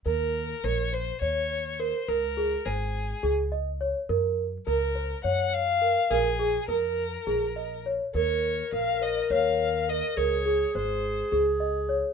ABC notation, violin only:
X:1
M:7/8
L:1/8
Q:1/4=104
K:Ebdor
V:1 name="Violin"
B2 d c d2 c | B2 A2 z3 | z2 B2 g f2 | A2 B4 z |
d2 f e f2 e | d2 c2 z3 |]